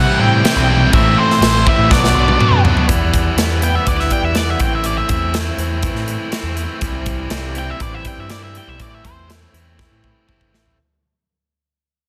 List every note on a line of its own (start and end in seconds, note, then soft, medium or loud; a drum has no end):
0.00 0.43 C3 medium
0.00 0.44 C3 loud
0.00 0.43 E3 loud
0.00 0.21 G3 loud
0.00 0.43 G3 medium
0.00 0.20 C4 loud
0.00 0.43 C4 medium
0.00 0.19 E4 loud
0.00 0.20 F#5 medium
0.20 0.39 A2 loud
0.20 0.43 G3 medium
0.20 0.44 C4 medium
0.20 0.44 E4 medium
0.20 0.89 G5 loud
0.44 0.91 C3 loud
0.44 0.91 C3 medium
0.44 0.91 E3 medium
0.44 0.69 G3 medium
0.44 0.69 C4 medium
0.44 0.67 E4 medium
0.44 snare loud
0.44 crash medium
0.56 0.86 B1 medium
0.69 0.93 G3 medium
0.69 0.92 C4 medium
0.69 0.92 E4 medium
0.93 1.13 A1 loud
0.93 1.40 A2 loud
0.93 1.40 E3 loud
0.93 1.18 A3 loud
0.93 1.17 C4 loud
0.93 1.16 E4 loud
0.93 1.19 E5 loud
0.93 kick loud
0.93 crash medium
1.17 1.41 A3 medium
1.17 1.41 C4 medium
1.17 1.42 E4 medium
1.17 1.68 C5 loud
1.31 snare soft
1.41 1.61 A1 medium
1.41 1.89 A2 medium
1.41 1.89 E3 loud
1.41 1.66 A3 loud
1.41 1.65 C4 loud
1.41 1.64 E4 loud
1.41 snare loud
1.41 crash medium
1.65 1.90 A2 medium
1.65 1.90 E3 medium
1.65 1.90 A3 medium
1.65 1.89 C4 medium
1.65 1.89 E4 medium
1.65 1.92 E5 medium
1.65 kick medium
1.78 1.88 A2 loud
1.90 2.10 B1 loud
1.90 2.37 B2 medium
1.90 2.15 F#3 loud
1.90 2.14 B3 loud
1.90 2.13 D4 loud
1.90 2.60 D5 medium
1.90 kick loud
1.90 snare medium
2.04 snare medium
2.14 2.34 B1 loud
2.14 2.38 F#3 medium
2.14 2.39 B3 medium
2.14 2.39 D4 medium
2.28 high tom medium
2.39 2.86 B2 medium
2.39 2.64 F#3 medium
2.39 2.63 B3 medium
2.39 2.62 D4 medium
2.39 mid tom medium
2.51 2.71 F#2 loud
2.63 2.88 B2 medium
2.63 2.87 F#3 medium
2.63 2.87 B3 medium
2.63 2.87 D4 medium
2.63 floor tom loud
2.77 floor tom loud
2.88 4.11 E2 medium
2.88 3.28 E2 medium
2.88 3.36 E3 medium
2.88 3.36 G3 medium
2.88 3.37 B3 medium
2.88 3.38 E4 loud
2.88 kick loud
2.88 closed hi-hat medium
3.14 kick medium
3.14 closed hi-hat medium
3.36 3.76 E2 medium
3.36 3.85 E3 medium
3.36 3.62 G3 medium
3.36 3.61 B3 medium
3.36 3.60 E4 medium
3.36 snare loud
3.36 closed hi-hat medium
3.61 3.84 G3 medium
3.61 3.85 B3 medium
3.61 3.86 E4 medium
3.61 3.75 G5 medium
3.61 closed hi-hat medium
3.75 3.87 E5 medium
3.85 4.06 D2 medium
3.85 4.33 E3 medium
3.85 4.33 G3 medium
3.85 4.34 B3 medium
3.85 4.35 E4 medium
3.85 3.99 D5 medium
3.85 kick loud
3.85 closed hi-hat medium
4.00 4.12 E5 medium
4.00 snare soft
4.10 4.60 G3 medium
4.10 4.24 G5 medium
4.10 kick medium
4.10 closed hi-hat medium
4.22 4.52 E2 medium
4.22 4.37 E5 medium
4.34 4.60 E3 medium
4.34 4.58 G3 medium
4.34 4.58 B3 medium
4.34 4.59 E4 medium
4.34 4.50 D5 medium
4.34 snare loud
4.34 closed hi-hat medium
4.50 4.61 E5 medium
4.59 4.99 A1 medium
4.59 4.83 A2 medium
4.59 4.84 E3 medium
4.59 4.84 A3 medium
4.59 4.85 C4 medium
4.59 4.86 E4 medium
4.59 4.75 G5 medium
4.59 kick medium
4.59 closed hi-hat medium
4.75 4.86 E5 medium
4.84 5.32 A2 medium
4.84 5.34 E3 medium
4.84 5.33 A3 medium
4.84 5.35 C4 medium
4.84 5.35 E4 medium
4.84 4.97 D5 medium
4.84 closed hi-hat medium
4.98 5.09 E5 medium
5.09 5.48 E2 medium
5.09 5.34 E5 medium
5.09 kick medium
5.09 closed hi-hat medium
5.33 5.83 A2 medium
5.33 5.82 E3 medium
5.33 5.59 A3 medium
5.33 5.59 C4 medium
5.33 5.58 E4 medium
5.33 snare loud
5.33 closed hi-hat medium
5.58 5.88 E2 medium
5.58 5.82 A3 medium
5.58 5.84 C4 medium
5.58 5.84 E4 medium
5.58 closed hi-hat medium
5.82 6.31 E3 medium
5.82 6.30 A3 medium
5.82 6.32 C4 medium
5.82 6.33 E4 medium
5.82 kick loud
5.82 closed hi-hat medium
5.94 6.14 A2 medium
5.94 snare soft
6.08 6.56 A3 medium
6.08 closed hi-hat medium
6.31 6.81 E3 medium
6.31 6.56 A3 medium
6.31 6.56 C4 medium
6.31 6.55 E4 medium
6.31 snare medium
6.31 closed hi-hat medium
6.43 6.63 E2 medium
6.56 6.80 A3 medium
6.56 6.82 C4 medium
6.56 6.82 E4 medium
6.56 closed hi-hat medium
6.81 7.21 C2 medium
6.81 7.29 C3 medium
6.81 7.30 E3 medium
6.81 7.29 G3 medium
6.81 7.31 C4 medium
6.81 7.31 E4 medium
6.81 kick medium
6.81 closed hi-hat medium
7.06 kick medium
7.06 closed hi-hat medium
7.30 7.70 C2 medium
7.30 7.80 C3 medium
7.30 7.79 E3 medium
7.30 7.55 G3 medium
7.30 7.55 C4 medium
7.30 7.54 E4 medium
7.30 snare loud
7.30 closed hi-hat medium
7.55 7.79 G3 soft
7.55 7.80 C4 medium
7.55 7.80 E4 medium
7.55 closed hi-hat medium
7.59 7.69 G5 medium
7.70 7.81 E5 medium
7.79 8.00 A1 medium
7.79 8.29 E3 medium
7.79 8.29 G3 medium
7.79 8.30 C4 medium
7.79 8.31 E4 medium
7.79 7.94 D5 medium
7.79 kick medium
7.79 closed hi-hat medium
7.94 8.05 E5 medium
8.05 8.54 G3 medium
8.05 8.18 G5 medium
8.05 kick medium
8.05 closed hi-hat medium
8.18 8.57 G2 medium
8.18 8.30 E5 medium
8.29 8.78 E3 medium
8.29 8.55 G3 medium
8.29 8.54 C4 medium
8.29 8.53 E4 medium
8.29 8.42 D5 medium
8.29 snare medium
8.29 closed hi-hat medium
8.44 8.57 E5 medium
8.54 8.78 G3 medium
8.54 8.79 C4 medium
8.54 8.80 E4 medium
8.54 8.69 G5 medium
8.54 closed hi-hat medium
8.68 8.77 B1 medium
8.68 8.80 E5 medium
8.78 8.99 A1 medium
8.78 9.26 A2 medium
8.78 9.27 E3 medium
8.78 9.28 A3 medium
8.78 9.28 C4 medium
8.78 9.28 E4 medium
8.78 8.92 D5 medium
8.78 kick medium
8.78 closed hi-hat medium
8.95 9.05 E5 medium
9.04 9.44 E2 medium
9.04 9.28 C5 medium
9.04 kick medium
9.04 closed hi-hat medium
9.28 9.77 A2 medium
9.28 9.76 E3 medium
9.28 9.54 A3 medium
9.28 9.53 C4 medium
9.28 9.52 E4 medium
9.28 snare loud
9.28 closed hi-hat medium
9.53 9.83 E2 medium
9.53 9.77 A3 soft
9.53 9.78 C4 medium
9.53 9.78 E4 medium
9.53 closed hi-hat medium
9.78 10.26 E3 medium
9.78 10.27 A3 medium
9.78 10.27 C4 medium
9.78 10.28 E4 medium
9.78 kick medium
9.78 snare soft
9.91 10.10 A2 medium
10.04 10.52 A3 medium
10.04 kick medium
10.27 10.50 G1 medium
10.27 10.75 E3 medium
10.27 10.54 A3 medium
10.27 10.53 C4 medium
10.27 10.52 E4 medium
10.27 kick medium
10.41 kick medium
10.53 10.75 A1 medium
10.53 10.77 A3 soft
10.53 10.76 C4 soft
10.53 10.76 E4 medium
10.53 snare medium
10.66 floor tom medium